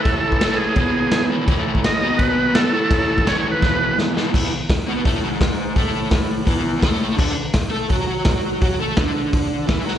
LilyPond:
<<
  \new Staff \with { instrumentName = "Transistor combo organ" } { \time 4/4 \key e \major \tempo 4 = 168 a'8 a'8 a'8 gis'2 r8 | r4 dis''4 b'16 b'8. a'8 a'8~ | a'4 cis''16 cis''16 b'4. r4 | \key e \mixolydian r1 |
r1 | r1 | r1 | }
  \new Staff \with { instrumentName = "Overdriven electric guitar" } { \clef bass \time 4/4 \key e \major <a, e a>4 <a, e a>4 <e, b, e>4. <e, b, e>8 | <a, e a>4. <b, fis b>4. <b, fis b>8 <a, e a>8~ | <a, e a>4 <a, e a>4 <e, b, e>4. <e, b, e>8 | \key e \mixolydian <e, e>8 e,8 r8 <b, b>8 <a, a>8 <gis, gis>4. |
<a, a>2 <e, e>4 <a, a>4 | <d d'>8 d8 r8 <a a'>8 <fis fis'>8 <fis fis'>4. | <fis fis'>8 <a a'>8 <d d'>2 <e e'>8 <fis fis'>8 | }
  \new DrumStaff \with { instrumentName = "Drums" } \drummode { \time 4/4 <cymc bd>8. bd16 <cymc sn>4 <cymc bd>4 <cymc sn>4 | <cymc bd>8. bd16 <cymc sn>4 <cymc bd>4 <cymc sn>4 | <cymc bd>8. bd16 <cymc sn>4 <bd sn>4 sn8 sn8 | <cymc bd>4 <hho bd sn>4 <hho bd>4 <hho bd sn>4 |
<hho bd>4 <hho bd sn>4 <hho bd>4 <hho bd sn>4 | <cymc bd>4 <hho bd sn>4 <hho bd>4 <hho bd sn>4 | <hho bd>4 <hho bd sn>4 <hho bd>4 <hho bd sn>8 sn8 | }
>>